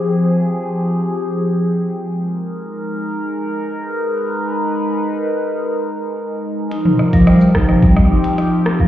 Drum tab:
HH |----------------|----------------|----------------|x--xx---x--xx---|
SH |----------------|----------------|----------------|-----x----------|
SD |----------------|----------------|----------------|--r-r-rr-r--r-r-|
T2 |----------------|----------------|----------------|-o-----o--------|
BD |----------------|----------------|----------------|---o--o-oo-----o|